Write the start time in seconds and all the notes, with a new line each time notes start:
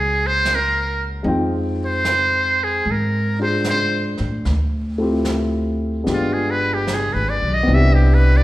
Already playing: C#2 F#3 A#3 C#4 E4 G#4
0.27 C5
0.45 snare, hi-hat pedal
0.55 A#4
1.23 F2 G#3 C4 D#4 F4, brush sweep
1.28 G5
1.86 C5
2.05 snare, hi-hat pedal
2.64 G#4
2.85 G#2, brush sweep
2.91 A#4
3.39 D4 F4 G#4 C5
3.64 snare, hi-hat pedal
3.69 C5
4.17 A2, snare
4.45 D2, brush sweep, snare
4.98 A3 C4 E4 F4
5.02 G4
5.25 snare, hi-hat pedal
6.04 G1 G#3 B3 D4 F4, brush sweep, snare
6.08 G4
6.13 F4
6.33 G#4
6.51 B4
6.74 G4
6.87 snare, hi-hat pedal
6.94 G#4
7.13 G#1 B4
7.29 D5
7.42 B1
7.54 D#5
7.63 B3 C4
7.68 C2 D4 E4, brush sweep
7.74 G4 E5
7.94 G4
8.14 B4
8.37 D5